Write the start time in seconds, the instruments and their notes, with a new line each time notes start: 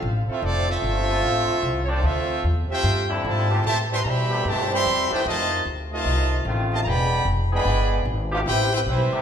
Already playing: trombone section D3 F3 C4 F4
0.02 upright bass A1
0.28 trombone section A3 C4 E4, trumpet section C4 F4 A4 E5, muted upright bass stroke
0.42 upright bass F1, trombone section F3 A3 D4, trumpet section C4 F4 A4 D5
0.69 trombone section A3 C4 F4, trumpet section C4 F4 A4 E5
0.82 upright bass G1
1.09 trombone section D3 F3 C4 F4
1.23 upright bass A1
1.49 muted upright bass stroke
1.62 upright bass C2
1.83 trumpet section C#5
1.88 trombone section D3 F3 A3 C4 D4, trumpet section C4 F4 A4 D5
2.03 upright bass D2, trombone section A3 C4 F4, trumpet section C4 F4 A4 E5
2.44 upright bass E2
2.70 trombone section A3 C4 G4, trumpet section F4 C5 E5 G5, muted upright bass stroke
2.84 upright bass G2
3.09 trombone section D3 F3 C4 E4
3.24 upright bass G#2, trombone section C3 F3 A4, trumpet section F4 C5 E5 A5
3.49 trombone section C3 A3 B3 G4
3.64 upright bass A2, trombone section C3 E3 A3, trumpet section G4 C5 E5 A5
3.90 trombone section E3 G3 C4, trumpet section G4 B4 E5 C6
4.03 trombone section B2 E3 G3, upright bass B2, trumpet section A#5
4.07 trumpet section G4 C5 E5 B5
4.30 trombone section C3 A3 B3 G4
4.45 upright bass G2, trombone section C3 E3 A3, trumpet section G4 C5 E5 A5
4.71 trombone section E3 G3 C4, trumpet section G4 E5 B5 C6
4.86 upright bass E2
5.11 trombone section D#3 A3 C4 D4 E4 G4, trumpet section E4 B4 C5 G5, muted upright bass stroke
5.26 upright bass F2, trombone section C3 D#3 A3, trumpet section F4 C5 D#5 A5
5.66 upright bass D2
5.92 trombone section C3 D#3 A3, trumpet section F4 C5 D#5 A5
6.05 upright bass C2
6.45 upright bass A1, trombone section D#3 A3 C4 F4
6.72 trombone section C3 D#3 A3, trumpet section F4 C5 D#5 A5
6.82 upright bass E1, trombone section D3 G#3 B3, trumpet section A#5
6.87 trumpet section G#4 D5 G5 B5
7.25 upright bass F1
7.51 trombone section D3 E3 G#3 B3 D4 G#4, trumpet section G#4 D5 G5 B5
7.65 upright bass G1
8.05 upright bass G#1
8.31 trombone section C3 A3 B3 F4 G4, trumpet section D4 G4 B4 F5
8.46 upright bass A1, trombone section C4 E4 G4, trumpet section E4 B4 C5 G5
8.73 trombone section C4 E4 G4, trumpet section E4 B4 C5 G5
8.87 upright bass B1, trombone section E3 G3 C4, trumpet section G3 E4 B4 C5
9.12 trombone section C3 A3 B3 G4, muted upright bass stroke